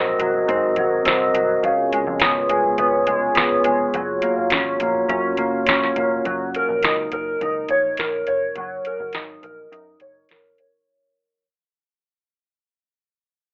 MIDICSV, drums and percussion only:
0, 0, Header, 1, 2, 480
1, 0, Start_track
1, 0, Key_signature, 6, "major"
1, 0, Tempo, 577478
1, 1357, Time_signature, 4, 2, 24, 8
1, 11246, End_track
2, 0, Start_track
2, 0, Title_t, "Drums"
2, 162, Note_on_c, 9, 42, 70
2, 245, Note_off_c, 9, 42, 0
2, 283, Note_on_c, 9, 36, 75
2, 366, Note_off_c, 9, 36, 0
2, 401, Note_on_c, 9, 36, 90
2, 405, Note_on_c, 9, 42, 72
2, 484, Note_off_c, 9, 36, 0
2, 488, Note_off_c, 9, 42, 0
2, 633, Note_on_c, 9, 42, 72
2, 639, Note_on_c, 9, 36, 85
2, 716, Note_off_c, 9, 42, 0
2, 722, Note_off_c, 9, 36, 0
2, 875, Note_on_c, 9, 42, 84
2, 895, Note_on_c, 9, 38, 104
2, 958, Note_off_c, 9, 42, 0
2, 978, Note_off_c, 9, 38, 0
2, 1118, Note_on_c, 9, 42, 75
2, 1202, Note_off_c, 9, 42, 0
2, 1357, Note_on_c, 9, 36, 110
2, 1360, Note_on_c, 9, 42, 80
2, 1440, Note_off_c, 9, 36, 0
2, 1443, Note_off_c, 9, 42, 0
2, 1600, Note_on_c, 9, 42, 68
2, 1683, Note_off_c, 9, 42, 0
2, 1720, Note_on_c, 9, 36, 88
2, 1803, Note_off_c, 9, 36, 0
2, 1825, Note_on_c, 9, 42, 89
2, 1842, Note_on_c, 9, 38, 112
2, 1908, Note_off_c, 9, 42, 0
2, 1925, Note_off_c, 9, 38, 0
2, 2073, Note_on_c, 9, 42, 79
2, 2156, Note_off_c, 9, 42, 0
2, 2195, Note_on_c, 9, 36, 76
2, 2278, Note_off_c, 9, 36, 0
2, 2311, Note_on_c, 9, 42, 72
2, 2312, Note_on_c, 9, 36, 97
2, 2394, Note_off_c, 9, 42, 0
2, 2396, Note_off_c, 9, 36, 0
2, 2550, Note_on_c, 9, 42, 73
2, 2553, Note_on_c, 9, 36, 91
2, 2633, Note_off_c, 9, 42, 0
2, 2636, Note_off_c, 9, 36, 0
2, 2785, Note_on_c, 9, 42, 84
2, 2804, Note_on_c, 9, 38, 98
2, 2868, Note_off_c, 9, 42, 0
2, 2888, Note_off_c, 9, 38, 0
2, 3028, Note_on_c, 9, 42, 71
2, 3111, Note_off_c, 9, 42, 0
2, 3273, Note_on_c, 9, 42, 72
2, 3356, Note_off_c, 9, 42, 0
2, 3507, Note_on_c, 9, 42, 70
2, 3590, Note_off_c, 9, 42, 0
2, 3743, Note_on_c, 9, 42, 90
2, 3759, Note_on_c, 9, 38, 115
2, 3826, Note_off_c, 9, 42, 0
2, 3842, Note_off_c, 9, 38, 0
2, 3989, Note_on_c, 9, 42, 70
2, 4072, Note_off_c, 9, 42, 0
2, 4115, Note_on_c, 9, 36, 73
2, 4198, Note_off_c, 9, 36, 0
2, 4234, Note_on_c, 9, 36, 99
2, 4234, Note_on_c, 9, 42, 71
2, 4317, Note_off_c, 9, 42, 0
2, 4318, Note_off_c, 9, 36, 0
2, 4466, Note_on_c, 9, 42, 74
2, 4473, Note_on_c, 9, 36, 79
2, 4549, Note_off_c, 9, 42, 0
2, 4556, Note_off_c, 9, 36, 0
2, 4708, Note_on_c, 9, 42, 89
2, 4728, Note_on_c, 9, 38, 101
2, 4791, Note_off_c, 9, 42, 0
2, 4811, Note_off_c, 9, 38, 0
2, 4850, Note_on_c, 9, 38, 36
2, 4933, Note_off_c, 9, 38, 0
2, 4955, Note_on_c, 9, 42, 66
2, 4956, Note_on_c, 9, 36, 82
2, 5038, Note_off_c, 9, 42, 0
2, 5039, Note_off_c, 9, 36, 0
2, 5198, Note_on_c, 9, 36, 98
2, 5198, Note_on_c, 9, 42, 70
2, 5281, Note_off_c, 9, 36, 0
2, 5281, Note_off_c, 9, 42, 0
2, 5440, Note_on_c, 9, 42, 66
2, 5523, Note_off_c, 9, 42, 0
2, 5673, Note_on_c, 9, 42, 78
2, 5689, Note_on_c, 9, 38, 113
2, 5756, Note_off_c, 9, 42, 0
2, 5773, Note_off_c, 9, 38, 0
2, 5915, Note_on_c, 9, 42, 66
2, 5921, Note_on_c, 9, 36, 80
2, 5998, Note_off_c, 9, 42, 0
2, 6004, Note_off_c, 9, 36, 0
2, 6159, Note_on_c, 9, 36, 93
2, 6161, Note_on_c, 9, 42, 68
2, 6242, Note_off_c, 9, 36, 0
2, 6245, Note_off_c, 9, 42, 0
2, 6388, Note_on_c, 9, 42, 66
2, 6396, Note_on_c, 9, 36, 77
2, 6471, Note_off_c, 9, 42, 0
2, 6479, Note_off_c, 9, 36, 0
2, 6627, Note_on_c, 9, 42, 89
2, 6647, Note_on_c, 9, 38, 96
2, 6711, Note_off_c, 9, 42, 0
2, 6730, Note_off_c, 9, 38, 0
2, 6871, Note_on_c, 9, 42, 64
2, 6954, Note_off_c, 9, 42, 0
2, 7111, Note_on_c, 9, 42, 72
2, 7114, Note_on_c, 9, 36, 95
2, 7194, Note_off_c, 9, 42, 0
2, 7197, Note_off_c, 9, 36, 0
2, 7355, Note_on_c, 9, 42, 59
2, 7438, Note_off_c, 9, 42, 0
2, 7480, Note_on_c, 9, 36, 83
2, 7564, Note_off_c, 9, 36, 0
2, 7586, Note_on_c, 9, 42, 77
2, 7603, Note_on_c, 9, 38, 108
2, 7669, Note_off_c, 9, 42, 0
2, 7686, Note_off_c, 9, 38, 0
2, 7839, Note_on_c, 9, 42, 60
2, 7922, Note_off_c, 9, 42, 0
2, 8084, Note_on_c, 9, 42, 71
2, 8167, Note_off_c, 9, 42, 0
2, 8311, Note_on_c, 9, 42, 62
2, 8318, Note_on_c, 9, 36, 80
2, 8394, Note_off_c, 9, 42, 0
2, 8401, Note_off_c, 9, 36, 0
2, 8552, Note_on_c, 9, 42, 81
2, 8572, Note_on_c, 9, 38, 93
2, 8636, Note_off_c, 9, 42, 0
2, 8655, Note_off_c, 9, 38, 0
2, 8796, Note_on_c, 9, 42, 67
2, 8879, Note_off_c, 9, 42, 0
2, 11246, End_track
0, 0, End_of_file